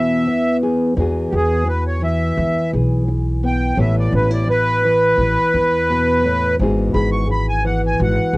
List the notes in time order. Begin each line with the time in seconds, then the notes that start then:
Already playing: E2 B2 E3 B3 E4 G#4 E5
0.27 E3
0.63 G#4
0.97 E2 E3 B3 F#4 G#4
1.31 E2 F#4 G4
1.36 G#4
1.67 B4, muted nylon-string guitar stroke
1.87 C#5
2.02 E3 E5
2.37 E2
2.73 B1 G#4
3.08 muted nylon-string guitar stroke
3.43 B3 G5
3.77 A1 A2 E3 B3 E4 B4 E5
3.99 D5
4.12 A1 C#4 B4
4.31 E4 D5
4.47 B4, muted nylon-string guitar stroke
4.85 E3
5.18 A1 E4
5.54 E2 E4
5.90 B2
6.25 A2
6.59 G#1 G#2 E3 B3 F#4 G#4
6.94 G#1 G#4 B5
7.12 C#6
7.29 B5, muted nylon-string guitar stroke
7.49 G#5
7.65 E3 F#5
7.86 G#5
8.00 G#1 F#4 F#5
8.33 B1 G#4